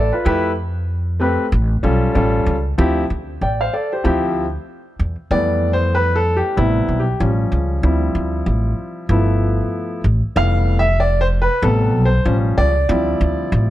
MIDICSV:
0, 0, Header, 1, 3, 480
1, 0, Start_track
1, 0, Tempo, 631579
1, 196, Time_signature, 4, 2, 24, 8
1, 10412, End_track
2, 0, Start_track
2, 0, Title_t, "Grand piano"
2, 0, Program_c, 0, 0
2, 0, Note_on_c, 0, 69, 65
2, 0, Note_on_c, 0, 74, 76
2, 91, Note_off_c, 0, 74, 0
2, 94, Note_off_c, 0, 69, 0
2, 95, Note_on_c, 0, 71, 63
2, 100, Note_on_c, 0, 65, 55
2, 189, Note_off_c, 0, 71, 0
2, 189, Note_on_c, 0, 57, 84
2, 192, Note_on_c, 0, 64, 81
2, 195, Note_on_c, 0, 67, 80
2, 201, Note_on_c, 0, 71, 92
2, 327, Note_off_c, 0, 65, 0
2, 374, Note_off_c, 0, 57, 0
2, 376, Note_off_c, 0, 64, 0
2, 377, Note_off_c, 0, 67, 0
2, 380, Note_off_c, 0, 71, 0
2, 909, Note_on_c, 0, 57, 74
2, 914, Note_on_c, 0, 60, 64
2, 917, Note_on_c, 0, 67, 65
2, 921, Note_on_c, 0, 71, 77
2, 1094, Note_off_c, 0, 57, 0
2, 1097, Note_off_c, 0, 60, 0
2, 1098, Note_off_c, 0, 67, 0
2, 1100, Note_off_c, 0, 71, 0
2, 1390, Note_on_c, 0, 55, 75
2, 1395, Note_on_c, 0, 61, 72
2, 1400, Note_on_c, 0, 65, 67
2, 1402, Note_on_c, 0, 69, 85
2, 1619, Note_off_c, 0, 55, 0
2, 1624, Note_off_c, 0, 61, 0
2, 1628, Note_off_c, 0, 65, 0
2, 1630, Note_off_c, 0, 69, 0
2, 1630, Note_on_c, 0, 55, 80
2, 1635, Note_on_c, 0, 61, 71
2, 1640, Note_on_c, 0, 65, 72
2, 1642, Note_on_c, 0, 69, 82
2, 1930, Note_off_c, 0, 55, 0
2, 1933, Note_off_c, 0, 61, 0
2, 1935, Note_off_c, 0, 65, 0
2, 1936, Note_off_c, 0, 69, 0
2, 2112, Note_on_c, 0, 53, 81
2, 2115, Note_on_c, 0, 60, 73
2, 2118, Note_on_c, 0, 64, 78
2, 2123, Note_on_c, 0, 67, 90
2, 2296, Note_off_c, 0, 53, 0
2, 2297, Note_off_c, 0, 60, 0
2, 2299, Note_off_c, 0, 64, 0
2, 2301, Note_off_c, 0, 67, 0
2, 2599, Note_on_c, 0, 79, 60
2, 2604, Note_on_c, 0, 74, 54
2, 2733, Note_off_c, 0, 79, 0
2, 2736, Note_off_c, 0, 74, 0
2, 2741, Note_on_c, 0, 77, 72
2, 2745, Note_on_c, 0, 72, 61
2, 2832, Note_off_c, 0, 77, 0
2, 2834, Note_off_c, 0, 72, 0
2, 2839, Note_on_c, 0, 74, 67
2, 2842, Note_on_c, 0, 69, 56
2, 2973, Note_off_c, 0, 74, 0
2, 2975, Note_off_c, 0, 69, 0
2, 2984, Note_on_c, 0, 72, 63
2, 2988, Note_on_c, 0, 67, 51
2, 3070, Note_on_c, 0, 53, 80
2, 3071, Note_off_c, 0, 67, 0
2, 3074, Note_on_c, 0, 60, 68
2, 3078, Note_on_c, 0, 64, 69
2, 3082, Note_on_c, 0, 67, 89
2, 3209, Note_off_c, 0, 72, 0
2, 3370, Note_off_c, 0, 53, 0
2, 3372, Note_off_c, 0, 60, 0
2, 3374, Note_off_c, 0, 64, 0
2, 3376, Note_off_c, 0, 67, 0
2, 4033, Note_on_c, 0, 52, 53
2, 4036, Note_on_c, 0, 55, 48
2, 4039, Note_on_c, 0, 57, 49
2, 4039, Note_on_c, 0, 74, 98
2, 4043, Note_on_c, 0, 59, 54
2, 4357, Note_on_c, 0, 72, 91
2, 4367, Note_off_c, 0, 74, 0
2, 4519, Note_on_c, 0, 71, 91
2, 4521, Note_off_c, 0, 72, 0
2, 4678, Note_on_c, 0, 69, 95
2, 4682, Note_off_c, 0, 71, 0
2, 4838, Note_on_c, 0, 67, 84
2, 4842, Note_off_c, 0, 69, 0
2, 4964, Note_off_c, 0, 52, 0
2, 4965, Note_off_c, 0, 55, 0
2, 4967, Note_off_c, 0, 57, 0
2, 4969, Note_off_c, 0, 59, 0
2, 4987, Note_on_c, 0, 48, 58
2, 4992, Note_on_c, 0, 55, 50
2, 4995, Note_on_c, 0, 59, 59
2, 4996, Note_on_c, 0, 64, 90
2, 5002, Note_off_c, 0, 67, 0
2, 5317, Note_on_c, 0, 67, 73
2, 5325, Note_off_c, 0, 64, 0
2, 5328, Note_off_c, 0, 48, 0
2, 5330, Note_off_c, 0, 55, 0
2, 5332, Note_off_c, 0, 59, 0
2, 5472, Note_on_c, 0, 53, 52
2, 5476, Note_on_c, 0, 55, 49
2, 5481, Note_on_c, 0, 61, 62
2, 5540, Note_off_c, 0, 67, 0
2, 5930, Note_off_c, 0, 53, 0
2, 5932, Note_off_c, 0, 55, 0
2, 5934, Note_off_c, 0, 61, 0
2, 5953, Note_on_c, 0, 53, 54
2, 5955, Note_on_c, 0, 55, 50
2, 5958, Note_on_c, 0, 60, 47
2, 5962, Note_on_c, 0, 64, 59
2, 6884, Note_off_c, 0, 53, 0
2, 6885, Note_off_c, 0, 55, 0
2, 6886, Note_off_c, 0, 60, 0
2, 6888, Note_off_c, 0, 64, 0
2, 6912, Note_on_c, 0, 53, 58
2, 6915, Note_on_c, 0, 57, 52
2, 6918, Note_on_c, 0, 59, 54
2, 6922, Note_on_c, 0, 64, 62
2, 7604, Note_off_c, 0, 53, 0
2, 7605, Note_off_c, 0, 57, 0
2, 7607, Note_off_c, 0, 59, 0
2, 7608, Note_off_c, 0, 64, 0
2, 7871, Note_on_c, 0, 55, 57
2, 7874, Note_on_c, 0, 57, 54
2, 7878, Note_on_c, 0, 59, 52
2, 7881, Note_on_c, 0, 52, 60
2, 7881, Note_on_c, 0, 77, 104
2, 8176, Note_off_c, 0, 77, 0
2, 8202, Note_on_c, 0, 76, 99
2, 8210, Note_off_c, 0, 55, 0
2, 8212, Note_off_c, 0, 57, 0
2, 8214, Note_off_c, 0, 59, 0
2, 8215, Note_off_c, 0, 52, 0
2, 8348, Note_off_c, 0, 76, 0
2, 8360, Note_on_c, 0, 74, 97
2, 8507, Note_off_c, 0, 74, 0
2, 8518, Note_on_c, 0, 72, 100
2, 8556, Note_off_c, 0, 72, 0
2, 8676, Note_on_c, 0, 71, 92
2, 8832, Note_on_c, 0, 48, 54
2, 8837, Note_on_c, 0, 55, 52
2, 8839, Note_on_c, 0, 69, 91
2, 8841, Note_off_c, 0, 71, 0
2, 8841, Note_on_c, 0, 59, 62
2, 9161, Note_on_c, 0, 72, 88
2, 9167, Note_off_c, 0, 69, 0
2, 9170, Note_off_c, 0, 48, 0
2, 9173, Note_off_c, 0, 55, 0
2, 9175, Note_off_c, 0, 59, 0
2, 9313, Note_on_c, 0, 53, 61
2, 9318, Note_on_c, 0, 55, 52
2, 9322, Note_on_c, 0, 61, 65
2, 9382, Note_off_c, 0, 72, 0
2, 9558, Note_on_c, 0, 74, 106
2, 9651, Note_off_c, 0, 53, 0
2, 9653, Note_off_c, 0, 55, 0
2, 9656, Note_off_c, 0, 61, 0
2, 9794, Note_on_c, 0, 53, 58
2, 9796, Note_on_c, 0, 55, 50
2, 9800, Note_on_c, 0, 60, 53
2, 9804, Note_on_c, 0, 64, 60
2, 10412, Note_off_c, 0, 53, 0
2, 10412, Note_off_c, 0, 55, 0
2, 10412, Note_off_c, 0, 60, 0
2, 10412, Note_off_c, 0, 64, 0
2, 10412, Note_off_c, 0, 74, 0
2, 10412, End_track
3, 0, Start_track
3, 0, Title_t, "Upright bass"
3, 0, Program_c, 1, 32
3, 197, Note_on_c, 1, 41, 108
3, 1029, Note_off_c, 1, 41, 0
3, 1156, Note_on_c, 1, 33, 100
3, 1348, Note_off_c, 1, 33, 0
3, 1394, Note_on_c, 1, 35, 86
3, 1587, Note_off_c, 1, 35, 0
3, 1636, Note_on_c, 1, 33, 89
3, 1828, Note_off_c, 1, 33, 0
3, 1873, Note_on_c, 1, 37, 89
3, 2066, Note_off_c, 1, 37, 0
3, 2116, Note_on_c, 1, 38, 106
3, 2308, Note_off_c, 1, 38, 0
3, 2357, Note_on_c, 1, 38, 85
3, 2549, Note_off_c, 1, 38, 0
3, 2594, Note_on_c, 1, 33, 84
3, 2787, Note_off_c, 1, 33, 0
3, 3075, Note_on_c, 1, 38, 92
3, 3460, Note_off_c, 1, 38, 0
3, 3796, Note_on_c, 1, 40, 85
3, 3911, Note_off_c, 1, 40, 0
3, 4033, Note_on_c, 1, 41, 94
3, 4867, Note_off_c, 1, 41, 0
3, 4996, Note_on_c, 1, 33, 95
3, 5188, Note_off_c, 1, 33, 0
3, 5232, Note_on_c, 1, 35, 75
3, 5426, Note_off_c, 1, 35, 0
3, 5475, Note_on_c, 1, 33, 96
3, 5667, Note_off_c, 1, 33, 0
3, 5713, Note_on_c, 1, 37, 84
3, 5907, Note_off_c, 1, 37, 0
3, 5953, Note_on_c, 1, 38, 100
3, 6146, Note_off_c, 1, 38, 0
3, 6193, Note_on_c, 1, 38, 94
3, 6387, Note_off_c, 1, 38, 0
3, 6431, Note_on_c, 1, 33, 93
3, 6625, Note_off_c, 1, 33, 0
3, 6909, Note_on_c, 1, 31, 101
3, 7296, Note_off_c, 1, 31, 0
3, 7632, Note_on_c, 1, 33, 98
3, 7748, Note_off_c, 1, 33, 0
3, 7874, Note_on_c, 1, 29, 110
3, 8708, Note_off_c, 1, 29, 0
3, 8834, Note_on_c, 1, 33, 106
3, 9074, Note_off_c, 1, 33, 0
3, 9074, Note_on_c, 1, 35, 85
3, 9267, Note_off_c, 1, 35, 0
3, 9313, Note_on_c, 1, 33, 95
3, 9507, Note_off_c, 1, 33, 0
3, 9557, Note_on_c, 1, 37, 92
3, 9749, Note_off_c, 1, 37, 0
3, 9797, Note_on_c, 1, 38, 106
3, 9989, Note_off_c, 1, 38, 0
3, 10037, Note_on_c, 1, 38, 97
3, 10229, Note_off_c, 1, 38, 0
3, 10276, Note_on_c, 1, 33, 103
3, 10412, Note_off_c, 1, 33, 0
3, 10412, End_track
0, 0, End_of_file